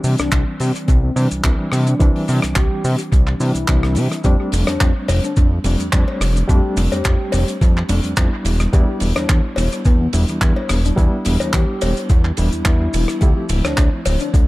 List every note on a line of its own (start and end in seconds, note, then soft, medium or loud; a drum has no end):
0.00 1.13 E3 loud
0.00 1.13 G3 medium
0.00 1.13 C4 medium
0.00 1.14 D4 loud
0.00 shaker loud
0.04 0.16 C3 loud
0.04 open hi-hat loud
0.18 0.30 C2 soft
0.18 0.42 D4 medium
0.18 cross-stick medium
0.18 closed hi-hat medium
0.18 shaker medium
0.31 0.44 C2 medium
0.31 kick loud
0.31 clap loud
0.31 closed hi-hat medium
0.31 shaker medium
0.60 0.72 C3 loud
0.60 open hi-hat loud
0.60 shaker medium
0.75 closed hi-hat medium
0.75 shaker medium
0.87 1.10 C2 medium
0.87 0.97 C4 medium
0.87 kick loud
0.87 closed hi-hat medium
0.87 shaker medium
1.03 1.12 C4 medium
1.16 1.28 C3 loud
1.16 1.41 E3 medium
1.16 1.41 G3 medium
1.16 1.41 C4 medium
1.16 1.42 D4 medium
1.16 open hi-hat loud
1.16 shaker medium
1.31 1.42 C2 soft
1.31 closed hi-hat medium
1.31 shaker medium
1.43 1.56 C2 loud
1.43 1.97 E3 medium
1.43 1.97 G3 medium
1.43 1.98 C4 medium
1.43 1.98 D4 medium
1.43 kick loud
1.43 clap loud
1.43 closed hi-hat medium
1.43 shaker medium
1.72 1.95 C3 medium
1.72 cross-stick medium
1.72 open hi-hat medium
1.72 shaker medium
1.87 1.96 D4 medium
1.87 closed hi-hat medium
1.87 shaker medium
2.00 2.12 C2 loud
2.00 3.37 E3 loud
2.00 3.38 G3 medium
2.00 3.38 C4 medium
2.00 2.10 D4 medium
2.00 3.38 D4 loud
2.00 kick loud
2.00 closed hi-hat medium
2.00 shaker medium
2.16 open hi-hat medium
2.28 2.40 C3 loud
2.28 open hi-hat loud
2.28 shaker medium
2.42 2.54 C2 soft
2.42 cross-stick medium
2.42 closed hi-hat medium
2.42 shaker medium
2.56 2.68 C2 medium
2.56 2.99 G4 loud
2.56 kick loud
2.56 clap loud
2.56 closed hi-hat medium
2.56 shaker soft
2.84 2.96 C3 loud
2.84 open hi-hat loud
2.84 shaker loud
2.98 closed hi-hat medium
2.98 shaker medium
3.12 3.35 C2 medium
3.12 kick loud
3.12 closed hi-hat medium
3.12 shaker soft
3.27 clap soft
3.40 3.52 C3 medium
3.40 3.65 E3 medium
3.40 3.65 G3 medium
3.40 3.66 C4 medium
3.40 3.66 D4 medium
3.40 4.19 E4 medium
3.40 open hi-hat loud
3.40 shaker medium
3.55 3.66 C2 soft
3.55 closed hi-hat medium
3.55 shaker medium
3.67 3.98 C2 loud
3.67 4.21 E3 medium
3.67 4.22 G3 medium
3.67 4.22 C4 medium
3.67 4.22 D4 medium
3.67 kick loud
3.67 clap loud
3.67 closed hi-hat medium
3.67 shaker medium
3.83 cross-stick medium
3.95 4.08 C3 loud
3.95 open hi-hat loud
3.95 shaker medium
4.12 cross-stick medium
4.12 closed hi-hat medium
4.12 shaker medium
4.24 4.36 F2 loud
4.24 5.61 G3 loud
4.24 5.62 A3 medium
4.24 5.62 C4 medium
4.24 5.62 D4 loud
4.24 4.34 G4 medium
4.24 kick loud
4.24 closed hi-hat medium
4.24 shaker medium
4.40 4.48 G4 medium
4.52 4.64 F1 loud
4.52 open hi-hat loud
4.52 ride medium
4.52 shaker medium
4.67 4.78 F2 soft
4.67 4.91 D4 medium
4.67 cross-stick medium
4.67 closed hi-hat medium
4.67 cowbell medium
4.67 shaker medium
4.80 4.93 F2 medium
4.80 kick loud
4.80 clap loud
4.80 closed hi-hat medium
4.80 shaker medium
5.08 5.20 F1 loud
5.08 open hi-hat loud
5.08 ride medium
5.08 cowbell loud
5.08 shaker medium
5.24 5.32 D4 medium
5.24 closed hi-hat medium
5.24 shaker medium
5.36 5.59 F2 medium
5.36 5.47 D4 medium
5.36 kick loud
5.36 closed hi-hat medium
5.36 shaker medium
5.64 5.76 F1 loud
5.64 5.90 G3 medium
5.64 5.90 A3 medium
5.64 5.90 C4 medium
5.64 5.90 D4 medium
5.64 open hi-hat loud
5.64 ride medium
5.64 shaker medium
5.80 5.90 F2 soft
5.80 closed hi-hat medium
5.80 shaker medium
5.92 6.05 F2 medium
5.92 6.46 G3 medium
5.92 6.46 A3 medium
5.92 6.46 C4 medium
5.92 6.46 D4 medium
5.92 kick loud
5.92 clap loud
5.92 closed hi-hat medium
5.92 shaker medium
6.08 cowbell medium
6.21 6.43 F1 medium
6.21 cross-stick medium
6.21 open hi-hat loud
6.21 ride medium
6.21 shaker medium
6.36 closed hi-hat medium
6.36 shaker medium
6.48 6.61 F2 loud
6.48 7.85 G3 loud
6.48 7.86 A3 medium
6.48 7.86 C4 medium
6.48 7.86 D4 loud
6.48 6.73 G4 medium
6.48 kick loud
6.48 closed hi-hat medium
6.48 shaker medium
6.77 6.88 F1 loud
6.77 open hi-hat loud
6.77 ride medium
6.77 shaker medium
6.92 7.03 F2 soft
6.92 7.48 G4 loud
6.92 closed hi-hat medium
6.92 cowbell medium
6.92 shaker medium
7.04 7.17 F2 medium
7.04 kick loud
7.04 clap loud
7.04 closed hi-hat medium
7.04 shaker medium
7.32 7.45 F1 loud
7.32 open hi-hat loud
7.32 ride medium
7.32 cowbell medium
7.32 shaker medium
7.48 closed hi-hat medium
7.48 shaker medium
7.61 7.83 F2 medium
7.61 kick loud
7.61 closed hi-hat medium
7.61 shaker medium
7.77 clap soft
7.89 8.01 F1 loud
7.89 8.14 G3 medium
7.89 8.14 A3 medium
7.89 8.14 C4 medium
7.89 8.14 D4 medium
7.89 open hi-hat loud
7.89 ride medium
7.89 shaker medium
8.03 8.14 F2 soft
8.03 closed hi-hat medium
8.03 shaker medium
8.16 8.29 F2 medium
8.16 8.70 G3 medium
8.16 8.70 B3 medium
8.16 8.70 D4 medium
8.16 8.70 E4 medium
8.16 kick loud
8.16 clap loud
8.16 closed hi-hat medium
8.16 shaker medium
8.45 8.67 E1 medium
8.45 open hi-hat loud
8.45 ride medium
8.45 shaker medium
8.60 cross-stick medium
8.60 closed hi-hat medium
8.60 shaker medium
8.73 8.85 E2 loud
8.73 10.10 G3 loud
8.73 10.10 B3 medium
8.73 10.11 D4 medium
8.73 10.11 E4 loud
8.73 8.83 G4 medium
8.73 kick loud
8.73 closed hi-hat medium
8.73 shaker medium
8.88 8.97 G4 medium
9.00 9.13 E1 loud
9.00 open hi-hat loud
9.00 ride medium
9.00 shaker medium
9.16 9.27 E2 soft
9.16 9.39 D4 medium
9.16 cross-stick medium
9.16 closed hi-hat medium
9.16 cowbell medium
9.16 shaker medium
9.29 9.41 E2 medium
9.29 kick loud
9.29 clap loud
9.29 closed hi-hat medium
9.29 shaker soft
9.56 9.69 E1 loud
9.56 open hi-hat loud
9.56 ride medium
9.56 cowbell loud
9.56 shaker medium
9.72 closed hi-hat medium
9.72 shaker medium
9.85 10.08 E2 medium
9.85 9.95 B3 medium
9.85 kick loud
9.85 closed hi-hat medium
9.85 shaker medium
10.01 10.09 B3 medium
10.13 10.25 E1 loud
10.13 10.38 G3 medium
10.13 10.38 B3 medium
10.13 10.38 D4 medium
10.13 10.39 E4 medium
10.13 open hi-hat loud
10.13 ride medium
10.13 shaker medium
10.28 10.39 E2 soft
10.28 closed hi-hat medium
10.28 shaker medium
10.41 10.53 E2 loud
10.41 10.94 G3 medium
10.41 10.95 B3 medium
10.41 10.95 D4 medium
10.41 10.95 E4 medium
10.41 kick loud
10.41 clap loud
10.41 closed hi-hat medium
10.41 shaker medium
10.56 cowbell medium
10.69 10.92 E1 medium
10.69 cross-stick medium
10.69 open hi-hat loud
10.69 ride medium
10.69 shaker medium
10.85 10.93 D4 medium
10.85 closed hi-hat medium
10.85 shaker medium
10.96 11.09 E2 loud
10.96 12.34 G3 loud
10.96 12.34 B3 medium
10.96 12.35 D4 medium
10.96 11.07 D4 medium
10.96 12.35 E4 loud
10.96 kick loud
10.96 closed hi-hat medium
10.96 shaker soft
11.25 11.38 E1 loud
11.25 open hi-hat loud
11.25 ride medium
11.25 shaker medium
11.40 11.51 E2 soft
11.40 closed hi-hat medium
11.40 cowbell medium
11.40 shaker medium
11.53 11.65 E2 medium
11.53 11.97 G4 loud
11.53 kick loud
11.53 clap loud
11.53 closed hi-hat medium
11.53 shaker medium
11.81 11.94 E1 loud
11.81 open hi-hat loud
11.81 ride loud
11.81 cowbell loud
11.81 shaker medium
11.97 closed hi-hat medium
11.97 shaker medium
12.09 12.32 E2 medium
12.09 kick loud
12.09 closed hi-hat medium
12.09 shaker medium
12.25 clap soft
12.37 12.49 E1 loud
12.37 12.63 G3 medium
12.37 12.63 B3 medium
12.37 12.63 D4 medium
12.37 13.16 E4 loud
12.37 12.63 E4 medium
12.37 open hi-hat loud
12.37 ride medium
12.37 shaker medium
12.52 12.63 E2 soft
12.52 closed hi-hat medium
12.52 shaker medium
12.65 12.88 E2 medium
12.65 13.19 G3 medium
12.65 13.19 B3 medium
12.65 13.19 D4 medium
12.65 13.19 E4 medium
12.65 kick loud
12.65 clap loud
12.65 closed hi-hat medium
12.65 shaker soft
12.93 13.06 E1 loud
12.93 open hi-hat loud
12.93 ride medium
12.93 shaker medium
13.08 cross-stick medium
13.08 closed hi-hat medium
13.08 shaker medium
13.21 13.34 D2 loud
13.21 14.48 F3 loud
13.21 14.48 A3 medium
13.21 14.48 C4 medium
13.21 14.48 E4 loud
13.21 13.31 G4 medium
13.21 kick loud
13.21 closed hi-hat medium
13.21 shaker medium
13.37 13.45 G4 medium
13.49 13.61 D1 loud
13.49 open hi-hat loud
13.49 ride medium
13.49 shaker medium
13.65 13.75 D2 soft
13.65 13.88 D4 loud
13.65 cross-stick medium
13.65 closed hi-hat medium
13.65 cowbell medium
13.65 shaker medium
13.77 13.90 D2 medium
13.77 kick loud
13.77 clap loud
13.77 closed hi-hat medium
13.77 shaker medium
14.05 14.18 D1 loud
14.05 open hi-hat loud
14.05 ride medium
14.05 cowbell medium
14.05 shaker medium
14.20 14.29 D4 medium
14.20 closed hi-hat medium
14.20 shaker medium
14.34 14.48 D2 medium
14.34 14.44 D4 medium
14.34 kick loud
14.34 closed hi-hat medium
14.34 shaker soft